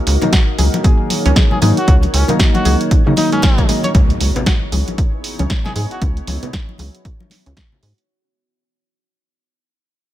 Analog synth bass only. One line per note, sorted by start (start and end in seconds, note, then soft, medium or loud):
0.07 0.17 C#2 medium
0.59 0.68 C#2 medium
1.26 1.32 C#2 medium
1.62 1.72 G#2 medium
1.88 2.06 C#2 loud
2.14 2.24 C#2 medium
2.65 2.75 C#2 medium
3.07 3.13 C#3 medium
3.95 4.13 C#2 loud
4.21 4.31 C#2 medium
4.72 4.82 C#2 medium
5.39 5.46 C#2 medium
5.76 5.86 G#2 medium
6.02 6.20 C#2 loud
6.28 6.37 C#2 medium
6.79 6.89 C#2 medium
7.46 7.53 C#2 medium
7.83 7.93 G#2 medium